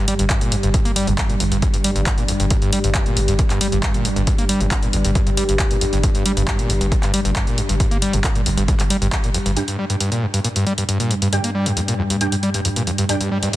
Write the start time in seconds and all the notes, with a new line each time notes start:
Already playing: G2 G3
0.08 G3, open hi-hat
0.19 G1 G2, closed hi-hat
0.30 G2, kick, clap, closed hi-hat
0.41 G1 A#2, closed hi-hat
0.52 G2, open hi-hat
0.63 G1 G2, closed hi-hat
0.74 G2, kick, closed hi-hat
0.85 G1 A#3, closed hi-hat
0.96 G3, open hi-hat
1.07 G1 F2, closed hi-hat
1.18 F2, kick, clap, closed hi-hat
1.29 G1 A#2, closed hi-hat
1.40 G1 F2, open hi-hat
1.51 G1 G2, closed hi-hat
1.62 G2, kick, closed hi-hat
1.73 G1 G2, closed hi-hat
1.84 G3, open hi-hat
1.96 G1 G2, closed hi-hat
2.06 F2, kick, clap, closed hi-hat
2.18 G1 A#2, closed hi-hat
2.28 F2, open hi-hat
2.40 G1 G2, closed hi-hat
2.50 G2, kick, closed hi-hat
2.62 G1 G2, closed hi-hat
2.73 G3, open hi-hat
2.84 G1 G2, closed hi-hat
2.95 G2, kick, clap, closed hi-hat
3.06 G1 A#2, closed hi-hat
3.17 G1 G2, open hi-hat
3.28 G1 G2, closed hi-hat
3.39 A#2, kick, closed hi-hat
3.50 G1 G2, clap, closed hi-hat
3.61 G3, open hi-hat
3.72 G1 G2, closed hi-hat
3.83 G2, kick, clap, closed hi-hat
3.94 G1 A#2, closed hi-hat
4.05 G2, open hi-hat
4.16 G1 G2, closed hi-hat
4.27 G2, kick, closed hi-hat
4.38 G1 A#3, closed hi-hat
4.49 G3, open hi-hat
4.60 G1 F2, closed hi-hat
4.71 F2, kick, clap, closed hi-hat
4.83 G1 A#2, closed hi-hat
4.93 G1 F2, open hi-hat
5.05 G1 G2, closed hi-hat
5.15 G2, kick, closed hi-hat
5.27 G1 G2, closed hi-hat
5.37 G3, open hi-hat
5.49 G1 G2, closed hi-hat
5.59 F2, kick, clap, closed hi-hat
5.71 G1 A#2, closed hi-hat
5.81 F2, open hi-hat
5.93 G1 G2, closed hi-hat
6.03 G2, kick, closed hi-hat
6.15 G1 G2, closed hi-hat
6.26 G3, open hi-hat
6.37 G1 G2, closed hi-hat
6.48 G2, kick, clap, closed hi-hat
6.59 G1 A#2, closed hi-hat
6.70 G1 G2, open hi-hat
6.81 G1 G2, closed hi-hat
6.92 A#2, kick, closed hi-hat
7.03 G1 G2, clap, closed hi-hat
7.14 G3, open hi-hat
7.25 G1 G2, closed hi-hat
7.36 G2, kick, clap, closed hi-hat
7.47 G1 A#2, closed hi-hat
7.58 G2, open hi-hat
7.69 G1 G2, closed hi-hat
7.80 G2, kick, closed hi-hat
7.91 G1 A#3, closed hi-hat
8.02 G3, open hi-hat
8.13 G1 F2, closed hi-hat
8.24 F2, kick, clap, closed hi-hat
8.35 G1 A#2, closed hi-hat
8.46 G1 F2, open hi-hat
8.57 G1 G2, closed hi-hat
8.68 G2, kick, closed hi-hat
8.79 G1 G2, clap, closed hi-hat
8.90 G3, open hi-hat
9.02 G1 G2, closed hi-hat
9.12 F2, kick, clap, closed hi-hat
9.24 G1 A#2, closed hi-hat
9.34 F2, open hi-hat
9.46 G1 G2, closed hi-hat
9.56 G2 G3 D4 G4 G5, closed hi-hat
9.68 G2, closed hi-hat
9.79 G3
9.90 G2, closed hi-hat
10.01 G2, closed hi-hat
10.12 A#2, closed hi-hat
10.22 G2
10.34 G2, closed hi-hat
10.44 A#2, closed hi-hat
10.56 G2, closed hi-hat
10.67 G3, closed hi-hat
10.78 G2, closed hi-hat
10.89 G2, closed hi-hat
11.00 A#2, closed hi-hat
11.11 G2, closed hi-hat
11.22 G2, closed hi-hat
11.33 G2 D4 G4 G5, closed hi-hat
11.44 A#3, closed hi-hat
11.55 G3
11.66 F2, closed hi-hat
11.77 F2, closed hi-hat
11.88 A#2, closed hi-hat
11.99 F2
12.10 G2, closed hi-hat
12.21 G2 D4 G4 G5, closed hi-hat
12.32 G2, closed hi-hat
12.43 G3, closed hi-hat
12.54 G2, closed hi-hat
12.65 F2, closed hi-hat
12.76 A#2, closed hi-hat
12.87 F2, closed hi-hat
12.98 G2, closed hi-hat
13.09 G2 D4 G4 G5, closed hi-hat, riser
13.21 G2, closed hi-hat
13.31 G3
13.43 G2, closed hi-hat